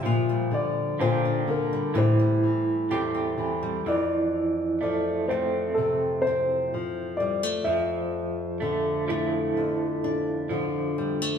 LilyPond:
<<
  \new Staff \with { instrumentName = "Grand piano" } { \time 4/4 \key f \major \tempo 4 = 63 << { e''8 d''8 c''8 bes'8 c''4. r8 | d''4 d''8 c''8 a'8 c''4 d''8 | e''4. r2 r8 | } \\ { g'4. r8 <e' g'>2 | r1 | r1 | } >> }
  \new Staff \with { instrumentName = "Clean electric guitar" } { \time 4/4 \key f \major f4 <bes d' g'>4 e4 <a c' g'>4 | e4 a8 <a c'>2~ <a c'>8 | f4 a8 <f a e'>4. f4 | }
  \new Staff \with { instrumentName = "Nylon-string guitar" } { \clef bass \time 4/4 \key f \major << { f'16 g8. f'16 d'8 g16 g'16 g8. g'16 c'8 g16 | r4. a4 c'4 g16 a16 | r4. a4 d'4 g16 a16 | } \\ { bes,8 d8 bes,8 d8 a,8 e8 e,8 e8 | f,4 f4 c4 f4 | f,4 d4 f,4 d4 | } >> }
>>